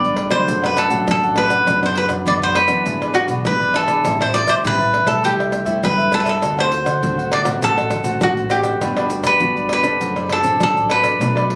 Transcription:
Already playing: G1 D3 G3 B3 D4 D5
0.04 G4 B4 D5, pandeiro, shaker
0.17 pandeiro, tamborim
0.30 D2 F#3 A3 D4 G4 B4 C5 D5, pandeiro, tamborim, shaker
0.47 F#1 F#2 D4 A4 D5 F#5, pandeiro, shaker, surdo
0.62 A4 B4 D5 F#5, pandeiro, tamborim, shaker
0.77 A4, pandeiro, tamborim, shaker
0.90 A1 F#3 A3 D4 A4 D5 F#5, pandeiro, shaker
1.07 A1 F#2 A4, pandeiro, tamborim, shaker, surdo
1.23 A4 D5 F#5, pandeiro, shaker
1.36 F#3 A3 D4 A4 B4, pandeiro, tamborim
1.50 A4 D5 F#5, pandeiro, tamborim, shaker
1.66 F#1 F#2 F#3 B3 D4 B4 D5 F#5, pandeiro, tamborim, shaker, surdo
1.82 F#3 B3 D4 B4 D5 F#5, pandeiro, tamborim, shaker
1.86 C5
1.94 B4, muted cavaquinho stroke, pandeiro
2.09 F#2 B4 D5 F#5, pandeiro, tamborim, shaker
2.26 F#1 F#2 F#3 B3 D4 B4 D5 F#5, pandeiro, shaker, surdo
2.42 B4 C5 D5 F#5, pandeiro, shaker
2.55 B4, pandeiro, tamborim
2.68 F#2 E3 B3 D4 B4 D5 F#5, pandeiro, tamborim, shaker
2.84 G#1 G#2 E4 G#4 B4 D5, pandeiro, shaker, surdo
3.01 G#4 B4 D5, pandeiro, tamborim, shaker
3.14 F#4, pandeiro, tamborim, shaker
3.27 B1 E3 B3 D4 G#4 B4 D5, pandeiro, shaker
3.45 G#1 G#2 B4, muted cavaquinho stroke, pandeiro, tamborim, shaker, surdo
3.60 G#4 B4 D5, pandeiro, shaker
3.73 E3 B3 D4 E4 G#4 A4 B4 D5, pandeiro, tamborim
3.87 G#4 B4 D5, pandeiro, tamborim, shaker
4.04 A1 A2 G3 C4 E4 G4 C5 E5 A5, pandeiro, tamborim, shaker, surdo
4.19 G3 C4 E4 C5 E5 A5, pandeiro, tamborim, shaker
4.33 D5, muted cavaquinho stroke, pandeiro, shaker
4.46 A2 C5 E5 A5, pandeiro, tamborim, shaker
4.63 A1 E3 G3 C4 E4 G4 B4 C5 E5 A5, pandeiro, shaker, surdo
4.79 C5 E5 A5, pandeiro, shaker
4.94 pandeiro, tamborim
5.05 B1 G3 A3 E4 A4 C5 E5 A5, pandeiro, tamborim, shaker
5.23 C2 C3 E4 G4 A4 C5 E5, pandeiro, shaker, surdo
5.39 A4 C5 E5, pandeiro, tamborim, shaker
5.52 pandeiro, tamborim, shaker
5.65 G2 G3 A3 E4 A4 C5 E5, pandeiro, shaker
5.83 G2 B4, muted cavaquinho stroke, pandeiro, tamborim, shaker, surdo
5.97 A4 C5 E5, pandeiro, shaker
6.10 G3 A3 E4 A4 C5, pandeiro, tamborim, shaker
6.14 A4
6.20 B4 E5
6.25 A4 C5, pandeiro, tamborim, shaker
6.29 A4
6.41 D2 D3 A3 C4 D4 F#4 A4 C5 F#5, pandeiro, tamborim, shaker, surdo
6.57 A3 C4 F#4 A4 C5 F#5, pandeiro, tamborim, shaker
6.70 muted cavaquinho stroke, pandeiro
6.85 D3 A4 C5 F#5, pandeiro, tamborim, shaker
7.01 D2 A2 A3 C4 D4 F#4 A4 C5 F#5, pandeiro, shaker, surdo
7.17 A4 C5 F#5, pandeiro, shaker
7.32 D5, pandeiro, tamborim
7.44 A1 A3 C4 F#4 A4 C5 F#5, pandeiro, tamborim, shaker
7.62 A1 D3 A3 C4 D4 F#4 A4 C5 F#5, pandeiro, shaker, surdo
7.77 A4 C5 F#5, pandeiro, tamborim, shaker
7.91 pandeiro, tamborim, shaker, surdo
8.04 A1 A3 C4 F#4 A4 C5 F#5, pandeiro, shaker
8.21 A1 A2 F#4, pandeiro, tamborim, shaker, surdo
8.37 A4 C5 F#5, pandeiro, shaker
8.50 A3 C4 D4 F#4 G4 A4 C5 F#5, pandeiro, tamborim, shaker
8.63 A4 C5 F#5, pandeiro, tamborim, shaker
8.81 G1 G3 B3 D4 F#4 G4 B4 D5, pandeiro, tamborim, shaker, surdo
8.96 B3 D4 F#4 G4 B4 D5, pandeiro, tamborim, shaker
9.09 muted cavaquinho stroke, pandeiro, shaker
9.23 G2 G4 B4 D5, pandeiro, tamborim, shaker
9.40 G1 D3 B3 D4 F#4 G4 B4 D5, pandeiro, shaker, surdo
9.56 G4 B4 D5, pandeiro, shaker
9.69 B4, pandeiro, tamborim
9.82 G1 C4 D4 G4 A4 B4 D5, pandeiro, tamborim, shaker
9.99 F#1 F#3 F#4 A4 C5 D5, pandeiro, shaker, surdo
10.16 A4 C5 D5, pandeiro, tamborim, shaker
10.29 A4, pandeiro, tamborim
10.43 A1 C4 D4 A4 C5 D5, pandeiro, shaker
10.60 A1 F#3 A4, muted cavaquinho stroke, pandeiro, tamborim, shaker, surdo
10.76 A4 C5 D5, pandeiro, shaker
10.89 C4 D4 F#4 A4 B4 C5 D5, pandeiro, tamborim
11.02 A4 C5 D5, pandeiro, tamborim, shaker
11.19 B1 B2 F#3 A3 D4 A4 B4 D5, pandeiro, tamborim, shaker, surdo
11.35 F#3 A3 D4 A4 B4 D5, pandeiro, tamborim, shaker
11.48 muted cavaquinho stroke, pandeiro

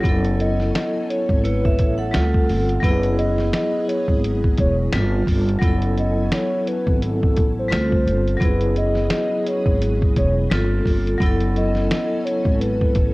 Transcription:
Already playing: A4
0.01 F#1 F#3 B3 G#5, kick
0.05 C#4 E4, closed hi-hat
0.09 A4
0.25 closed hi-hat
0.40 D#5, closed hi-hat
0.60 snare
0.75 D#5, finger snap, snare, closed hi-hat
1.10 C#5, closed hi-hat
1.29 G#1, kick
1.44 E4 B4 C#5, closed hi-hat
1.65 E5, kick
1.79 A1, kick, closed hi-hat
1.98 A4 F#5
2.11 D2 D3 G3 A3 C4 F4, finger snap, snare, closed hi-hat
2.16 A4
2.34 kick
2.49 G1, open hi-hat
2.69 closed hi-hat
2.80 F#1 F#3 B3 C#4 G#4 B4 D#5, kick, closed hi-hat
2.84 E4 B4
2.88 G#4
3.03 closed hi-hat
3.19 D#5, closed hi-hat
3.38 snare
3.53 D#5, finger snap, snare, closed hi-hat
3.88 C#5, closed hi-hat
4.08 G#1, kick
4.24 closed hi-hat
4.44 kick
4.57 E1 C#5, kick, closed hi-hat
4.92 G1 G3 A#3 C4 D4 F4 A4, finger snap, snare, closed hi-hat
4.96 F4 A4
5.27 G1, kick, open hi-hat
5.49 closed hi-hat
5.59 F#1 F#3 B3 C#4 E4 G#5, kick, closed hi-hat
5.64 E4 A4
5.82 closed hi-hat
5.98 D#5, closed hi-hat
6.32 C#5, finger snap, snare, closed hi-hat
6.67 B4, closed hi-hat
6.87 G#1, kick
7.02 A4, closed hi-hat
7.23 kick
7.37 A1, kick, closed hi-hat
7.59 C5
7.68 D2 D3 G3 A3 C4 F4, snare
7.73 A4, finger snap, closed hi-hat
7.92 kick
8.07 G1, closed hi-hat
8.28 closed hi-hat
8.37 F#3 B3, kick
8.41 F#1 F#3 C#4 E4 G#4 B4 D#5, closed hi-hat
8.45 G#4
8.61 closed hi-hat
8.76 D#5, closed hi-hat
8.95 snare
9.10 D#5, finger snap, snare, closed hi-hat
9.47 C#5, closed hi-hat
9.66 G#1, kick
9.82 closed hi-hat
10.02 kick
10.16 E1 C#5, kick, closed hi-hat
10.49 G1 G3 A#3 C4 D4 F4 A4, finger snap, snare, closed hi-hat
10.54 A4
10.86 G1, kick, open hi-hat
11.07 closed hi-hat
11.18 F#1 F#3 B3 C#4 G#5, kick, closed hi-hat
11.23 E4 A4
11.41 closed hi-hat
11.56 D#5, closed hi-hat
11.75 snare
11.90 D#5, finger snap, snare, closed hi-hat
12.25 C#5, closed hi-hat
12.45 G#1, kick
12.61 B4, closed hi-hat
12.81 kick
12.95 A1, kick, closed hi-hat

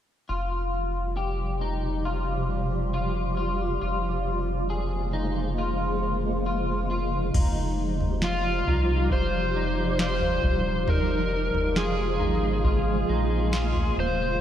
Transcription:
0.28 F1 C3 F3 G3 F4 G4
1.17 G4
1.61 D#4
2.05 F4
2.94 F4
3.37 F4
3.80 F1 C#3 F3 G#3 A#3 F4
4.70 G#4
5.13 D#4
5.58 F4
6.46 F4
6.91 F4
7.33 F1 C3 F3 G3 D#4 F4 G4, kick, floor tom, crash
8.01 floor tom
8.22 F4, snare
8.67 C2 D#4, floor tom
9.10 F1 D#4 F4 C5, kick
9.56 D#4
9.99 F4 C5, snare
10.21 floor tom
10.44 D#1, kick, floor tom
10.85 F1 C#3 G#3 A#3 D#4 F4, floor tom
10.90 A#4
11.54 F1, floor tom
11.76 F4 G#4, snare
12.20 G#1 D#4, floor tom
12.64 F4, kick
13.09 A#1 D#4
13.53 F4, snare
13.75 floor tom
13.97 D#1 C5, floor tom

